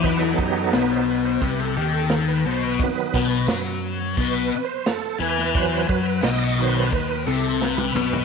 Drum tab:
HH |o---o---o---o---|o---o---o---o---|o---o---o-------|
SD |----oo------o---|----oo------o--o|----o-------o---|
T1 |----------------|----------------|-------------o--|
T2 |----------------|----------------|--------------o-|
FT |----------------|----------------|---------------o|
BD |o-o-----o-------|o-o-----o-------|o-o-----o-------|